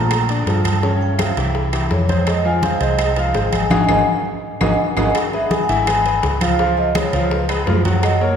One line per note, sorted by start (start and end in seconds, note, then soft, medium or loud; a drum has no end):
0.00 0.43 A#2 medium
0.00 0.23 F3 medium
0.00 0.23 A3 medium
0.00 0.23 F4 medium
0.00 0.27 A#5 loud
0.11 high bongo medium
0.11 high conga soft
0.11 high timbale medium
0.11 claves medium
0.29 0.44 D3 medium
0.29 0.44 D4 medium
0.29 0.44 D5 medium
0.29 high bongo soft
0.29 high conga soft
0.29 high timbale medium
0.47 1.31 G2 medium
0.47 0.77 F3 medium
0.47 0.77 F4 medium
0.47 0.77 A4 medium
0.47 0.85 A5 medium
0.47 high bongo medium
0.47 low bongo medium
0.47 high conga soft
0.47 high timbale medium
0.64 high bongo soft
0.64 high conga medium
0.64 high timbale medium
0.64 claves medium
0.83 1.13 C#3 medium
0.83 1.13 C#4 medium
0.83 1.13 C#5 medium
0.83 0.92 G5 medium
0.83 high bongo medium
0.83 high conga soft
1.01 1.07 G5 medium
1.01 high bongo soft
1.01 high conga soft
1.13 1.20 E5 soft
1.19 1.34 F3 medium
1.19 1.34 F4 medium
1.19 1.34 G4 medium
1.19 1.53 F5 medium
1.19 high bongo soft
1.19 high conga loud
1.19 high timbale medium
1.19 claves medium
1.37 1.87 C2 medium
1.37 1.67 E3 medium
1.37 1.67 E4 medium
1.37 1.67 G4 medium
1.37 high conga soft
1.37 high timbale medium
1.55 high bongo medium
1.55 high conga soft
1.73 2.02 E3 medium
1.73 2.03 E4 medium
1.73 2.03 G4 medium
1.73 high bongo soft
1.73 high conga soft
1.73 high timbale medium
1.73 claves medium
1.91 2.75 F2 medium
1.91 2.29 C#5 medium
1.91 high bongo medium
1.91 low bongo medium
1.91 high conga soft
2.09 2.39 G#3 medium
2.09 2.39 G#4 medium
2.09 2.39 C5 medium
2.09 high bongo soft
2.09 high conga medium
2.09 high timbale medium
2.27 2.46 D#5 medium
2.27 high bongo medium
2.27 high conga soft
2.27 high timbale medium
2.27 claves medium
2.45 2.60 F3 medium
2.45 2.60 F4 medium
2.45 2.60 F5 medium
2.45 2.62 G#5 loud
2.45 high bongo soft
2.45 high conga soft
2.63 2.78 G#3 medium
2.63 2.78 G#4 medium
2.63 2.78 C5 medium
2.63 2.81 F5 medium
2.63 high bongo soft
2.63 high conga loud
2.63 high timbale medium
2.81 3.31 C2 medium
2.81 3.10 G#3 medium
2.81 3.11 G#4 medium
2.81 3.11 C5 medium
2.81 3.19 D#5 medium
2.81 high conga soft
2.81 high timbale medium
2.98 high bongo medium
2.98 high conga soft
2.98 high timbale medium
2.98 claves medium
3.16 3.32 F3 medium
3.16 3.32 F4 medium
3.16 3.32 F5 medium
3.16 3.48 F5 medium
3.16 high bongo soft
3.16 high conga soft
3.16 high timbale medium
3.34 3.69 G#1 medium
3.34 3.65 G#3 medium
3.34 3.65 G#4 medium
3.34 3.65 C5 medium
3.34 high bongo medium
3.34 low bongo medium
3.34 high conga soft
3.34 high timbale medium
3.47 3.54 G5 medium
3.52 3.70 G#5 medium
3.52 high bongo soft
3.52 high conga medium
3.52 high timbale medium
3.52 claves medium
3.70 3.84 G#1 medium
3.70 3.82 D#4 loud
3.70 3.82 F#4 medium
3.70 3.82 G#4 loud
3.70 3.83 D#5 medium
3.70 3.83 F#5 medium
3.70 3.83 G#5 medium
3.70 low bongo loud
3.70 high conga loud
3.70 high timbale medium
3.70 claves medium
3.88 4.02 G#1 medium
3.88 4.00 D#4 medium
3.88 4.00 F#4 medium
3.88 4.00 G#4 medium
3.88 4.01 D#5 medium
3.88 4.02 F#5 medium
3.88 4.01 G#5 loud
3.88 low bongo loud
3.88 high conga loud
3.88 high timbale medium
3.88 claves medium
4.61 4.74 G#1 medium
4.61 4.73 D#4 medium
4.61 4.73 F#4 medium
4.61 4.73 G#4 medium
4.61 4.73 D#5 medium
4.61 4.73 F#5 medium
4.61 4.73 G#5 medium
4.61 low bongo loud
4.61 high conga loud
4.61 high timbale medium
4.61 claves medium
4.97 5.11 G#1 medium
4.97 5.09 D#4 medium
4.97 5.09 F#4 medium
4.97 5.09 G#4 medium
4.97 5.09 D#5 medium
4.97 5.09 F#5 medium
4.97 5.09 G#5 medium
4.97 low bongo medium
4.97 high conga medium
4.97 high timbale medium
4.97 claves medium
5.15 5.32 F#5 medium
5.15 high bongo medium
5.15 high conga soft
5.15 high timbale medium
5.15 claves medium
5.33 5.63 G#3 medium
5.33 5.63 G#4 medium
5.33 5.63 B4 medium
5.33 5.42 E5 loud
5.33 high bongo soft
5.33 high conga soft
5.51 5.57 G#5 loud
5.51 high bongo medium
5.51 high conga loud
5.51 high timbale medium
5.63 5.70 F#5 medium
5.69 6.19 G#1 medium
5.69 5.84 E3 medium
5.69 5.84 E4 medium
5.69 5.84 E5 medium
5.69 6.20 G#5 loud
5.69 high conga soft
5.69 high timbale medium
5.87 6.02 G#3 medium
5.87 6.02 G#4 medium
5.87 6.03 B4 medium
5.87 high bongo medium
5.87 high conga soft
5.87 high timbale medium
5.87 claves medium
6.05 6.35 G#3 medium
6.05 6.35 G#4 medium
6.05 6.35 B4 medium
6.05 high bongo soft
6.05 high conga soft
6.05 high timbale medium
6.23 7.07 C#2 medium
6.23 high bongo medium
6.23 low bongo medium
6.23 high conga soft
6.23 high timbale medium
6.41 6.56 F3 medium
6.41 6.56 F4 medium
6.41 6.75 F5 loud
6.41 6.57 F5 medium
6.41 high bongo soft
6.41 high conga medium
6.41 high timbale loud
6.41 claves medium
6.59 6.89 F3 medium
6.59 6.89 F4 medium
6.59 6.89 F5 medium
6.59 high bongo medium
6.59 high conga soft
6.77 6.94 D#5 medium
6.77 high bongo soft
6.77 high conga soft
6.95 7.10 G#3 medium
6.95 7.10 G#4 medium
6.95 7.10 B4 medium
6.95 high bongo medium
6.95 high conga loud
6.95 high timbale medium
6.95 claves medium
7.13 7.63 C#2 loud
7.13 7.43 F3 medium
7.13 7.43 F4 medium
7.13 7.43 F5 medium
7.13 high conga soft
7.13 high timbale medium
7.31 7.65 B4 medium
7.31 high bongo medium
7.31 high conga soft
7.49 7.64 G#3 medium
7.49 7.64 G#4 medium
7.49 7.64 B4 medium
7.49 high bongo soft
7.49 high conga soft
7.49 high timbale medium
7.49 claves medium
7.67 8.37 F#2 loud
7.67 7.82 F3 medium
7.67 7.82 F4 medium
7.67 7.82 F5 medium
7.67 high bongo medium
7.67 low bongo medium
7.67 high conga soft
7.67 low timbale medium
7.85 8.15 F#3 medium
7.85 8.15 F#4 medium
7.85 8.15 F#5 medium
7.85 high bongo soft
7.85 high conga medium
7.85 high timbale medium
8.03 8.20 D#5 loud
8.03 high bongo medium
8.03 high conga soft
8.03 high timbale medium
8.03 claves medium
8.21 8.37 A#3 medium
8.21 8.37 A#4 medium
8.21 8.37 C#5 medium
8.21 8.30 C#5 medium
8.21 high bongo soft
8.21 high conga soft